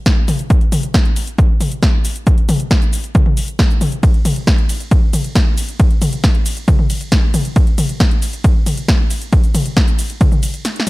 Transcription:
0.06 kick loud
0.06 snare loud
0.06 closed hi-hat medium
0.06 shaker soft
0.28 open hi-hat loud
0.28 mid tom medium
0.28 shaker medium
0.39 closed hi-hat medium
0.39 shaker soft
0.50 kick loud
0.50 closed hi-hat medium
0.50 shaker soft
0.61 closed hi-hat soft
0.72 open hi-hat loud
0.72 mid tom medium
0.72 shaker medium
0.83 closed hi-hat medium
0.83 shaker soft
0.94 kick loud
0.94 snare loud
0.94 closed hi-hat medium
0.94 shaker soft
1.05 closed hi-hat soft
1.16 open hi-hat loud
1.16 shaker medium
1.27 closed hi-hat medium
1.27 shaker soft
1.38 kick loud
1.38 closed hi-hat medium
1.38 shaker soft
1.61 open hi-hat loud
1.61 mid tom medium
1.61 shaker medium
1.72 closed hi-hat medium
1.72 shaker soft
1.83 kick loud
1.83 snare loud
1.83 closed hi-hat medium
1.83 shaker soft
2.05 open hi-hat loud
2.05 shaker medium
2.16 closed hi-hat medium
2.16 shaker soft
2.27 kick loud
2.27 closed hi-hat medium
2.27 shaker soft
2.38 closed hi-hat soft
2.49 open hi-hat loud
2.49 mid tom medium
2.49 shaker medium
2.60 closed hi-hat medium
2.60 shaker soft
2.71 kick loud
2.71 snare loud
2.71 closed hi-hat medium
2.71 shaker soft
2.82 closed hi-hat soft
2.82 shaker soft
2.93 open hi-hat loud
2.93 shaker medium
3.04 closed hi-hat soft
3.04 shaker soft
3.15 kick loud
3.15 closed hi-hat medium
3.15 mid tom medium
3.15 shaker soft
3.26 mid tom medium
3.37 open hi-hat loud
3.37 shaker medium
3.48 closed hi-hat soft
3.48 shaker soft
3.59 kick loud
3.59 snare loud
3.59 closed hi-hat medium
3.59 shaker soft
3.70 shaker soft
3.81 open hi-hat loud
3.81 mid tom medium
3.81 shaker medium
3.92 closed hi-hat soft
3.92 shaker soft
4.03 kick loud
4.03 closed hi-hat medium
4.03 ride medium
4.03 shaker soft
4.14 closed hi-hat soft
4.25 open hi-hat loud
4.25 mid tom medium
4.25 ride medium
4.25 shaker medium
4.36 closed hi-hat soft
4.36 shaker soft
4.47 kick loud
4.47 snare loud
4.47 closed hi-hat medium
4.47 ride medium
4.47 shaker soft
4.58 closed hi-hat soft
4.69 open hi-hat loud
4.69 ride medium
4.69 shaker medium
4.80 closed hi-hat medium
4.80 shaker soft
4.91 kick loud
4.91 closed hi-hat medium
4.91 ride medium
4.91 shaker soft
5.13 open hi-hat loud
5.13 mid tom medium
5.13 ride medium
5.13 shaker medium
5.24 closed hi-hat medium
5.24 shaker soft
5.35 kick loud
5.35 snare loud
5.35 closed hi-hat medium
5.35 ride medium
5.35 shaker soft
5.58 open hi-hat loud
5.58 ride medium
5.58 shaker medium
5.69 closed hi-hat soft
5.69 shaker soft
5.80 kick loud
5.80 closed hi-hat medium
5.80 ride medium
5.80 shaker soft
5.91 closed hi-hat soft
6.02 open hi-hat loud
6.02 mid tom medium
6.02 ride medium
6.02 shaker medium
6.13 closed hi-hat medium
6.13 shaker soft
6.24 kick loud
6.24 snare loud
6.24 closed hi-hat medium
6.24 ride medium
6.24 shaker soft
6.35 closed hi-hat soft
6.46 open hi-hat loud
6.46 ride medium
6.46 shaker medium
6.57 closed hi-hat medium
6.57 shaker soft
6.68 kick loud
6.68 closed hi-hat medium
6.68 mid tom medium
6.68 ride medium
6.68 shaker soft
6.79 mid tom medium
6.90 open hi-hat loud
6.90 ride medium
6.90 shaker medium
7.01 closed hi-hat medium
7.01 shaker soft
7.12 kick loud
7.12 snare loud
7.12 closed hi-hat medium
7.12 ride medium
7.12 shaker soft
7.34 open hi-hat loud
7.34 mid tom medium
7.34 ride medium
7.34 shaker medium
7.45 closed hi-hat medium
7.45 shaker soft
7.56 kick loud
7.56 closed hi-hat medium
7.56 ride medium
7.56 shaker soft
7.67 closed hi-hat soft
7.78 open hi-hat loud
7.78 mid tom medium
7.78 ride medium
7.78 shaker medium
7.89 closed hi-hat medium
7.89 shaker soft
8.00 kick loud
8.00 snare loud
8.00 closed hi-hat medium
8.00 ride medium
8.00 shaker soft
8.11 closed hi-hat soft
8.22 open hi-hat loud
8.22 ride medium
8.22 shaker medium
8.33 closed hi-hat medium
8.33 shaker soft
8.44 kick loud
8.44 closed hi-hat medium
8.44 ride medium
8.44 shaker soft
8.66 open hi-hat loud
8.66 mid tom medium
8.66 ride medium
8.66 shaker medium
8.77 closed hi-hat medium
8.77 shaker soft
8.88 kick loud
8.88 snare loud
8.88 closed hi-hat medium
8.88 ride medium
8.88 shaker soft
9.10 open hi-hat loud
9.10 ride medium
9.10 shaker medium
9.22 closed hi-hat medium
9.22 shaker soft
9.33 kick loud
9.33 closed hi-hat medium
9.33 ride medium
9.33 shaker soft
9.44 closed hi-hat soft
9.44 shaker soft
9.55 open hi-hat loud
9.55 mid tom medium
9.55 ride medium
9.55 shaker medium
9.66 closed hi-hat medium
9.66 shaker soft
9.77 kick loud
9.77 snare loud
9.77 closed hi-hat medium
9.77 ride medium
9.77 shaker soft
9.88 closed hi-hat soft
9.88 shaker soft
9.99 open hi-hat loud
9.99 ride medium
9.99 shaker medium
10.10 closed hi-hat medium
10.10 shaker soft
10.21 kick loud
10.21 closed hi-hat medium
10.21 mid tom medium
10.21 ride medium
10.21 shaker soft
10.32 mid tom medium
10.32 shaker soft
10.43 open hi-hat loud
10.43 ride medium
10.43 shaker medium
10.54 closed hi-hat medium
10.54 shaker soft
10.65 snare medium
10.65 closed hi-hat medium
10.65 ride medium
10.65 shaker soft
10.76 snare medium
10.76 closed hi-hat soft

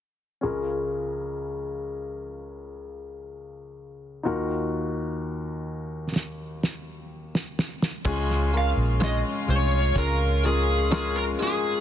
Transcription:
0.41 4.20 C#2 soft
0.41 4.20 C#3 soft
0.41 4.19 C#4 soft
0.41 4.20 F4 soft
0.41 4.20 G#4 soft
0.41 4.21 A#4 soft
4.23 8.02 D#2 soft
4.23 8.02 D#3 soft
4.23 8.01 D#4 medium
4.23 8.01 F4 soft
4.23 8.02 F#4 soft
4.23 8.02 A#4 medium
6.16 snare soft
6.63 snare medium
7.35 snare medium
7.59 snare medium
7.82 snare medium
8.04 8.73 C#2 medium
8.04 9.44 C#3 medium
8.04 8.50 G#3 loud
8.04 11.80 G#3 medium
8.04 8.50 C#4 medium
8.04 11.80 C#4 medium
8.04 11.80 F4 medium
8.04 8.51 F4 loud
8.04 8.51 G#4 loud
8.04 kick loud
8.04 crash medium
8.30 snare soft
8.52 8.98 G#3 medium
8.52 8.98 C#4 medium
8.52 8.98 F4 medium
8.52 8.99 A#4 medium
8.52 closed hi-hat medium
8.57 8.70 F5 medium
8.77 9.21 A#1 medium
9.00 9.45 G#3 medium
9.00 9.45 C#4 medium
9.00 9.46 F4 medium
9.00 9.46 G#4 medium
9.00 9.16 D#5 medium
9.00 snare loud
9.00 closed hi-hat medium
9.47 9.92 C2 medium
9.47 9.93 G#3 medium
9.47 9.93 C#4 medium
9.47 9.94 F4 medium
9.47 9.94 G#4 medium
9.47 9.98 C#5 medium
9.47 closed hi-hat medium
9.96 11.35 C#2 loud
9.96 10.41 G#3 medium
9.96 10.41 C#4 medium
9.96 10.42 F4 medium
9.96 10.45 A#4 medium
9.96 10.42 A#4 medium
9.96 kick medium
9.96 closed hi-hat medium
10.43 10.89 G#3 medium
10.43 10.89 C#4 medium
10.43 10.89 F4 medium
10.43 10.92 G#4 medium
10.43 10.89 A#4 medium
10.43 closed hi-hat medium
10.90 11.36 G#3 medium
10.90 11.36 C#4 medium
10.90 11.36 F4 medium
10.90 11.16 G#4 medium
10.90 11.37 A#4 medium
10.90 snare loud
10.90 closed hi-hat loud
11.17 11.23 A#4 medium
11.38 11.80 G#3 medium
11.38 11.80 C#4 medium
11.38 11.80 F4 medium
11.38 11.80 G#4 medium
11.38 closed hi-hat medium
11.43 11.80 G#4 medium

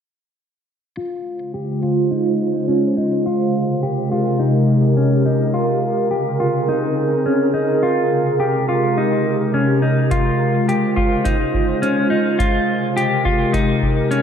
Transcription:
0.96 3.23 C#3 medium
0.96 3.23 G#3 medium
0.96 3.23 F4 medium
0.96 1.54 F4 medium
0.96 3.23 C5 medium
1.54 1.82 G4 medium
1.83 2.11 F4 medium
2.11 2.68 D#4 medium
2.68 2.97 C#4 medium
2.97 3.26 D#4 medium
3.26 5.52 C3 medium
3.26 5.52 G#3 medium
3.26 3.82 F4 medium
3.26 5.52 G4 medium
3.26 10.07 A#4 medium
3.83 4.11 G4 medium
4.12 4.40 F4 medium
4.39 4.96 D#4 medium
4.97 5.25 C#4 medium
5.26 5.54 D#4 medium
5.53 7.80 C#3 medium
5.53 7.80 C4 medium
5.53 6.11 F4 medium
5.53 7.80 G#4 medium
6.11 6.40 G4 medium
6.40 6.69 F4 medium
6.69 7.25 D#4 medium
7.26 7.53 C#4 medium
7.54 7.83 D#4 medium
7.83 10.10 C3 medium
7.83 14.22 G#3 medium
7.83 8.39 F4 medium
7.83 10.10 G4 medium
8.40 8.68 G4 medium
8.69 8.97 F4 medium
8.98 9.54 D#4 medium
9.54 9.82 C#4 medium
9.82 10.11 D#4 medium
10.11 12.38 C#3 medium
10.11 10.68 F4 medium
10.11 12.38 F4 medium
10.11 12.38 C5 medium
10.11 kick medium
10.11 closed hi-hat medium
10.69 10.96 G4 medium
10.69 closed hi-hat medium
10.96 11.25 F4 medium
10.96 kick medium
11.25 11.82 D#4 medium
11.25 kick medium
11.25 closed hi-hat medium
11.54 kick medium
11.82 12.10 C#4 medium
11.82 closed hi-hat medium
12.10 12.39 D#4 medium
12.39 14.22 C3 medium
12.39 12.96 F4 medium
12.39 14.22 G4 medium
12.39 14.22 A#4 medium
12.39 kick medium
12.39 closed hi-hat medium
12.97 13.25 G4 medium
12.97 closed hi-hat medium
13.25 13.54 F4 medium
13.25 kick medium
13.53 14.10 D#4 medium
13.53 kick medium
13.53 closed hi-hat medium
13.83 kick medium
14.11 14.22 C#4 medium
14.11 closed hi-hat medium

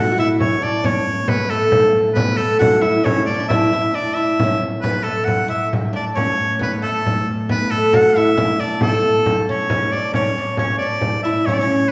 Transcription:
0.00 4.82 A2 medium
0.00 0.10 F#4 medium
0.00 0.17 F#5 loud
0.11 0.17 F#4 medium
0.18 0.61 E4 medium
0.18 0.29 E5 medium
0.40 0.65 C#5 medium
0.40 frame drum medium
0.62 0.85 D4 medium
0.62 0.88 D5 medium
0.84 1.28 C#4 medium
0.84 1.30 C#5 loud
0.84 frame drum medium
1.07 frame drum soft
1.28 1.50 B3 medium
1.28 1.51 B4 medium
1.28 frame drum medium
1.50 1.78 A3 medium
1.50 2.00 A4 medium
1.72 frame drum medium
1.79 1.99 A3 medium
2.14 2.37 B3 medium
2.14 2.38 B4 loud
2.14 frame drum loud
2.37 2.59 A3 medium
2.37 2.59 A4 medium
2.59 2.81 F#4 medium
2.59 2.83 F#5 loud
2.59 frame drum medium
2.81 3.03 E4 medium
2.81 3.06 E5 medium
3.04 3.27 C#4 medium
3.04 3.25 C#5 medium
3.04 frame drum medium
3.26 3.33 D4 medium
3.26 3.47 D5 medium
3.34 3.39 D4 medium
3.40 3.50 D4 medium
3.49 3.72 E4 medium
3.49 3.96 E5 loud
3.49 frame drum medium
3.73 3.93 E4 medium
3.73 frame drum soft
3.94 4.15 D4 medium
3.94 4.16 D5 medium
4.14 4.43 E4 medium
4.14 4.65 E5 medium
4.14 frame drum soft
4.39 4.64 C#4 medium
4.39 frame drum medium
4.81 10.13 A2 medium
4.81 5.04 B3 medium
4.81 5.05 B4 medium
4.81 frame drum medium
5.03 5.46 A3 medium
5.03 5.26 A4 medium
5.03 frame drum soft
5.25 5.48 F#5 medium
5.25 frame drum medium
5.48 5.69 E4 medium
5.48 5.70 E5 medium
5.73 frame drum medium
5.93 6.14 D4 medium
5.93 6.05 D5 medium
6.15 6.61 C#4 medium
6.15 6.57 C#5 medium
6.15 frame drum medium
6.59 6.80 B3 medium
6.59 6.72 B4 medium
6.59 frame drum medium
6.82 7.28 A3 medium
6.82 7.29 A4 medium
7.06 frame drum medium
7.49 7.71 B3 medium
7.49 7.72 B4 loud
7.49 frame drum medium
7.71 7.94 A3 medium
7.71 7.97 A4 medium
7.71 frame drum soft
7.93 8.16 F#4 medium
7.93 8.18 F#5 loud
7.93 frame drum medium
8.16 8.36 E4 medium
8.16 8.62 E5 loud
8.37 8.60 E4 medium
8.37 frame drum medium
8.60 8.82 D4 medium
8.60 8.82 D5 medium
8.81 9.66 A3 medium
8.81 9.44 A4 medium
8.81 frame drum medium
9.26 frame drum medium
9.49 9.70 C#4 medium
9.49 9.94 C#5 medium
9.49 frame drum soft
9.70 9.93 C#4 medium
9.70 frame drum medium
9.92 10.15 D4 medium
9.92 10.13 D5 medium
9.92 frame drum soft
10.13 11.92 A2 medium
10.13 10.37 C#4 medium
10.13 10.55 C#5 medium
10.13 frame drum medium
10.38 10.59 D4 medium
10.57 10.81 C#4 medium
10.57 10.78 C#5 medium
10.57 frame drum medium
10.78 11.20 D5 medium
10.82 11.24 D4 medium
11.01 frame drum medium
11.23 11.47 E4 medium
11.23 11.47 E5 medium
11.23 frame drum soft
11.46 11.60 C#4 medium
11.46 11.55 C#5 medium
11.46 frame drum medium
11.54 11.60 D5 medium
11.59 11.92 C#4 medium
11.59 11.90 C#5 loud
11.88 11.92 B4 medium

